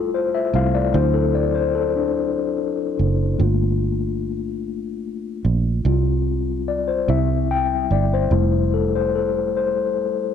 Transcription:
0, 0, Header, 1, 3, 480
1, 0, Start_track
1, 0, Key_signature, -1, "major"
1, 0, Tempo, 819113
1, 554, Time_signature, 6, 3, 24, 8
1, 6062, End_track
2, 0, Start_track
2, 0, Title_t, "Tine electric piano"
2, 0, Program_c, 0, 4
2, 0, Control_c, 0, 64, 127
2, 0, Note_on_c, 0, 55, 41
2, 0, Note_on_c, 0, 57, 40
2, 0, Note_on_c, 0, 64, 48
2, 0, Note_on_c, 0, 65, 74
2, 0, Note_on_c, 0, 69, 75
2, 81, Note_off_c, 0, 69, 0
2, 85, Note_on_c, 0, 72, 78
2, 202, Note_on_c, 0, 76, 80
2, 203, Note_off_c, 0, 72, 0
2, 310, Note_off_c, 0, 76, 0
2, 314, Note_off_c, 0, 55, 0
2, 314, Note_on_c, 0, 55, 45
2, 315, Note_off_c, 0, 57, 0
2, 315, Note_on_c, 0, 57, 40
2, 319, Note_off_c, 0, 64, 0
2, 319, Note_on_c, 0, 64, 52
2, 324, Note_on_c, 0, 77, 94
2, 438, Note_on_c, 0, 74, 82
2, 442, Note_off_c, 0, 77, 0
2, 531, Note_off_c, 0, 55, 0
2, 531, Note_off_c, 0, 57, 0
2, 533, Note_off_c, 0, 64, 0
2, 546, Note_on_c, 0, 54, 44
2, 548, Note_on_c, 0, 60, 43
2, 550, Note_on_c, 0, 64, 53
2, 552, Note_on_c, 0, 72, 84
2, 560, Note_off_c, 0, 74, 0
2, 562, Control_c, 0, 64, 0
2, 567, Note_off_c, 0, 65, 0
2, 649, Control_c, 0, 64, 127
2, 666, Note_on_c, 0, 69, 75
2, 677, Note_off_c, 0, 72, 0
2, 790, Note_on_c, 0, 74, 77
2, 794, Note_off_c, 0, 69, 0
2, 869, Note_off_c, 0, 54, 0
2, 870, Note_off_c, 0, 60, 0
2, 871, Note_off_c, 0, 64, 0
2, 907, Note_on_c, 0, 72, 80
2, 916, Note_off_c, 0, 74, 0
2, 1025, Note_on_c, 0, 69, 72
2, 1034, Note_off_c, 0, 72, 0
2, 1148, Note_on_c, 0, 62, 68
2, 1153, Note_off_c, 0, 69, 0
2, 1982, Note_on_c, 0, 57, 49
2, 1986, Note_on_c, 0, 58, 41
2, 1989, Note_on_c, 0, 65, 53
2, 2003, Control_c, 0, 64, 0
2, 2087, Control_c, 0, 64, 127
2, 2328, Note_off_c, 0, 62, 0
2, 3405, Note_off_c, 0, 57, 0
2, 3407, Note_off_c, 0, 58, 0
2, 3408, Note_off_c, 0, 65, 0
2, 3434, Note_on_c, 0, 55, 49
2, 3439, Note_on_c, 0, 60, 44
2, 3442, Control_c, 0, 64, 0
2, 3442, Note_on_c, 0, 65, 52
2, 3548, Control_c, 0, 64, 127
2, 3916, Note_on_c, 0, 74, 75
2, 4031, Note_on_c, 0, 72, 68
2, 4039, Note_off_c, 0, 74, 0
2, 4131, Note_off_c, 0, 55, 0
2, 4133, Note_off_c, 0, 60, 0
2, 4135, Note_off_c, 0, 65, 0
2, 4148, Note_on_c, 0, 55, 46
2, 4152, Note_on_c, 0, 60, 45
2, 4154, Note_on_c, 0, 64, 53
2, 4156, Note_off_c, 0, 72, 0
2, 4158, Note_on_c, 0, 76, 84
2, 4162, Control_c, 0, 64, 0
2, 4264, Control_c, 0, 64, 127
2, 4401, Note_on_c, 0, 79, 93
2, 4403, Note_off_c, 0, 76, 0
2, 4470, Note_off_c, 0, 55, 0
2, 4472, Note_off_c, 0, 60, 0
2, 4473, Note_off_c, 0, 64, 0
2, 4640, Note_on_c, 0, 74, 84
2, 4645, Note_off_c, 0, 79, 0
2, 4761, Note_off_c, 0, 74, 0
2, 4769, Note_on_c, 0, 72, 80
2, 4870, Note_on_c, 0, 55, 48
2, 4873, Note_on_c, 0, 57, 45
2, 4877, Note_on_c, 0, 64, 50
2, 4883, Control_c, 0, 64, 0
2, 4974, Control_c, 0, 64, 127
2, 5121, Note_on_c, 0, 69, 71
2, 5132, Note_off_c, 0, 72, 0
2, 5191, Note_off_c, 0, 55, 0
2, 5193, Note_off_c, 0, 57, 0
2, 5195, Note_off_c, 0, 64, 0
2, 5241, Note_off_c, 0, 69, 0
2, 5247, Note_on_c, 0, 72, 81
2, 5364, Note_off_c, 0, 72, 0
2, 5364, Note_on_c, 0, 69, 72
2, 5605, Note_on_c, 0, 72, 65
2, 5606, Note_off_c, 0, 69, 0
2, 5823, Note_off_c, 0, 72, 0
2, 6062, End_track
3, 0, Start_track
3, 0, Title_t, "Fingered electric bass"
3, 0, Program_c, 1, 33
3, 0, Note_on_c, 1, 29, 92
3, 292, Note_off_c, 1, 29, 0
3, 314, Note_on_c, 1, 36, 83
3, 535, Note_off_c, 1, 36, 0
3, 552, Note_on_c, 1, 38, 94
3, 1730, Note_off_c, 1, 38, 0
3, 1754, Note_on_c, 1, 30, 75
3, 1975, Note_off_c, 1, 30, 0
3, 1989, Note_on_c, 1, 31, 96
3, 3169, Note_off_c, 1, 31, 0
3, 3191, Note_on_c, 1, 34, 80
3, 3413, Note_off_c, 1, 34, 0
3, 3428, Note_on_c, 1, 36, 96
3, 4128, Note_off_c, 1, 36, 0
3, 4151, Note_on_c, 1, 36, 90
3, 4609, Note_off_c, 1, 36, 0
3, 4633, Note_on_c, 1, 31, 74
3, 4854, Note_off_c, 1, 31, 0
3, 4869, Note_on_c, 1, 29, 96
3, 6048, Note_off_c, 1, 29, 0
3, 6062, End_track
0, 0, End_of_file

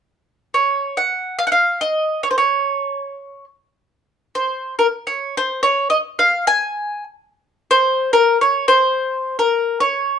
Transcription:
0, 0, Header, 1, 2, 480
1, 0, Start_track
1, 0, Tempo, 852273
1, 291, Time_signature, 2, 2, 24, 8
1, 2682, Tempo, 832178
1, 5082, Tempo, 862069
1, 5788, End_track
2, 0, Start_track
2, 0, Title_t, "Mandolin"
2, 0, Program_c, 0, 25
2, 305, Note_on_c, 0, 73, 58
2, 547, Note_on_c, 0, 78, 60
2, 550, Note_off_c, 0, 73, 0
2, 779, Note_off_c, 0, 78, 0
2, 781, Note_on_c, 0, 77, 74
2, 816, Note_off_c, 0, 77, 0
2, 827, Note_on_c, 0, 78, 59
2, 853, Note_off_c, 0, 78, 0
2, 855, Note_on_c, 0, 77, 67
2, 1016, Note_off_c, 0, 77, 0
2, 1019, Note_on_c, 0, 75, 71
2, 1254, Note_off_c, 0, 75, 0
2, 1258, Note_on_c, 0, 73, 64
2, 1285, Note_off_c, 0, 73, 0
2, 1299, Note_on_c, 0, 72, 49
2, 1326, Note_off_c, 0, 72, 0
2, 1339, Note_on_c, 0, 73, 62
2, 1938, Note_off_c, 0, 73, 0
2, 2451, Note_on_c, 0, 72, 54
2, 2672, Note_off_c, 0, 72, 0
2, 2697, Note_on_c, 0, 70, 61
2, 2739, Note_off_c, 0, 70, 0
2, 2859, Note_on_c, 0, 73, 59
2, 3018, Note_off_c, 0, 73, 0
2, 3035, Note_on_c, 0, 72, 73
2, 3179, Note_off_c, 0, 72, 0
2, 3182, Note_on_c, 0, 73, 76
2, 3335, Note_off_c, 0, 73, 0
2, 3338, Note_on_c, 0, 75, 70
2, 3379, Note_off_c, 0, 75, 0
2, 3505, Note_on_c, 0, 77, 78
2, 3660, Note_off_c, 0, 77, 0
2, 3668, Note_on_c, 0, 80, 88
2, 3994, Note_off_c, 0, 80, 0
2, 4381, Note_on_c, 0, 72, 89
2, 4617, Note_off_c, 0, 72, 0
2, 4625, Note_on_c, 0, 70, 82
2, 4763, Note_off_c, 0, 70, 0
2, 4788, Note_on_c, 0, 73, 72
2, 4939, Note_off_c, 0, 73, 0
2, 4942, Note_on_c, 0, 72, 90
2, 5339, Note_off_c, 0, 72, 0
2, 5342, Note_on_c, 0, 70, 65
2, 5570, Note_off_c, 0, 70, 0
2, 5573, Note_on_c, 0, 73, 69
2, 5788, Note_off_c, 0, 73, 0
2, 5788, End_track
0, 0, End_of_file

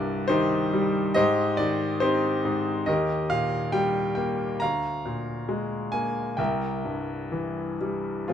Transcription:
0, 0, Header, 1, 2, 480
1, 0, Start_track
1, 0, Key_signature, -3, "minor"
1, 0, Tempo, 863309
1, 646, Time_signature, 4, 2, 24, 8
1, 2080, Tempo, 882353
1, 3520, Tempo, 953895
1, 4498, End_track
2, 0, Start_track
2, 0, Title_t, "Grand piano"
2, 0, Program_c, 0, 0
2, 0, Control_c, 0, 64, 127
2, 0, Note_on_c, 0, 36, 65
2, 0, Note_on_c, 0, 43, 50
2, 0, Note_on_c, 0, 67, 57
2, 0, Note_on_c, 0, 70, 60
2, 0, Note_on_c, 0, 74, 86
2, 154, Note_on_c, 0, 72, 93
2, 156, Note_off_c, 0, 67, 0
2, 164, Note_on_c, 0, 63, 66
2, 164, Note_on_c, 0, 67, 62
2, 166, Note_on_c, 0, 51, 68
2, 172, Note_off_c, 0, 74, 0
2, 407, Note_on_c, 0, 55, 62
2, 498, Note_off_c, 0, 72, 0
2, 623, Note_off_c, 0, 70, 0
2, 624, Note_off_c, 0, 63, 0
2, 624, Note_off_c, 0, 67, 0
2, 625, Note_off_c, 0, 36, 0
2, 626, Note_off_c, 0, 43, 0
2, 633, Note_off_c, 0, 51, 0
2, 636, Note_on_c, 0, 75, 100
2, 640, Note_off_c, 0, 55, 0
2, 643, Note_on_c, 0, 67, 68
2, 643, Note_on_c, 0, 72, 74
2, 647, Note_on_c, 0, 44, 73
2, 654, Control_c, 0, 64, 0
2, 761, Control_c, 0, 64, 127
2, 874, Note_on_c, 0, 74, 88
2, 888, Note_off_c, 0, 75, 0
2, 889, Note_on_c, 0, 51, 51
2, 1105, Note_off_c, 0, 72, 0
2, 1114, Note_on_c, 0, 72, 86
2, 1116, Note_off_c, 0, 67, 0
2, 1121, Note_on_c, 0, 63, 62
2, 1124, Note_off_c, 0, 74, 0
2, 1124, Note_on_c, 0, 67, 65
2, 1127, Note_on_c, 0, 60, 54
2, 1354, Note_off_c, 0, 44, 0
2, 1362, Note_on_c, 0, 44, 55
2, 1571, Note_off_c, 0, 72, 0
2, 1575, Note_off_c, 0, 63, 0
2, 1576, Note_off_c, 0, 67, 0
2, 1578, Note_off_c, 0, 51, 0
2, 1585, Note_off_c, 0, 60, 0
2, 1591, Note_on_c, 0, 75, 81
2, 1592, Note_off_c, 0, 44, 0
2, 1596, Note_on_c, 0, 39, 59
2, 1603, Note_on_c, 0, 70, 56
2, 1605, Control_c, 0, 64, 0
2, 1605, Note_on_c, 0, 67, 59
2, 1693, Control_c, 0, 64, 127
2, 1817, Note_off_c, 0, 75, 0
2, 1833, Note_on_c, 0, 46, 47
2, 1833, Note_on_c, 0, 77, 94
2, 2071, Note_on_c, 0, 79, 90
2, 2074, Note_on_c, 0, 55, 61
2, 2084, Note_off_c, 0, 77, 0
2, 2295, Note_off_c, 0, 79, 0
2, 2303, Note_on_c, 0, 79, 72
2, 2315, Note_on_c, 0, 58, 53
2, 2534, Note_off_c, 0, 39, 0
2, 2534, Note_off_c, 0, 46, 0
2, 2538, Note_off_c, 0, 70, 0
2, 2539, Note_off_c, 0, 67, 0
2, 2540, Note_off_c, 0, 55, 0
2, 2546, Note_on_c, 0, 82, 89
2, 2549, Note_off_c, 0, 58, 0
2, 2556, Note_on_c, 0, 38, 53
2, 2557, Note_off_c, 0, 79, 0
2, 2558, Note_on_c, 0, 77, 69
2, 2564, Control_c, 0, 64, 0
2, 2656, Control_c, 0, 64, 127
2, 2794, Note_on_c, 0, 46, 48
2, 3030, Note_on_c, 0, 56, 50
2, 3249, Note_off_c, 0, 82, 0
2, 3264, Note_on_c, 0, 80, 81
2, 3273, Note_on_c, 0, 58, 50
2, 3497, Note_off_c, 0, 38, 0
2, 3497, Note_off_c, 0, 46, 0
2, 3498, Note_off_c, 0, 77, 0
2, 3502, Note_off_c, 0, 56, 0
2, 3510, Note_on_c, 0, 79, 63
2, 3511, Note_off_c, 0, 58, 0
2, 3516, Note_on_c, 0, 36, 58
2, 3521, Note_off_c, 0, 80, 0
2, 3521, Note_on_c, 0, 70, 50
2, 3524, Note_on_c, 0, 76, 45
2, 3527, Control_c, 0, 64, 0
2, 3621, Control_c, 0, 64, 127
2, 3751, Note_on_c, 0, 43, 40
2, 3988, Note_on_c, 0, 52, 50
2, 4210, Note_off_c, 0, 79, 0
2, 4235, Note_on_c, 0, 55, 42
2, 4458, Note_off_c, 0, 36, 0
2, 4460, Note_off_c, 0, 43, 0
2, 4460, Note_off_c, 0, 70, 0
2, 4461, Note_off_c, 0, 76, 0
2, 4464, Note_off_c, 0, 52, 0
2, 4471, Note_on_c, 0, 65, 59
2, 4472, Note_off_c, 0, 55, 0
2, 4478, Note_on_c, 0, 56, 41
2, 4479, Note_on_c, 0, 60, 44
2, 4481, Note_on_c, 0, 41, 36
2, 4486, Control_c, 0, 64, 0
2, 4498, Note_off_c, 0, 41, 0
2, 4498, Note_off_c, 0, 56, 0
2, 4498, Note_off_c, 0, 60, 0
2, 4498, Note_off_c, 0, 65, 0
2, 4498, End_track
0, 0, End_of_file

